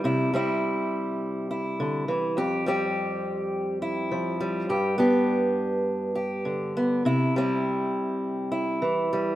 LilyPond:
\new Staff \with { instrumentName = "Steel-string acoustic guitar" } { \time 4/4 \key c \major \tempo 4 = 102 << { <g e'>8 <g c' e'>2 e'4. | g'8 <g c' g'>2 e'4 g8 | g'8 <b d' g'>2 g'4 b8 | e'8 <g c' e'>2 e'4 g8 | } \\ { c2. d8 e8 | f,2. f4 | g,2. d4 | c2. e4 | } >> }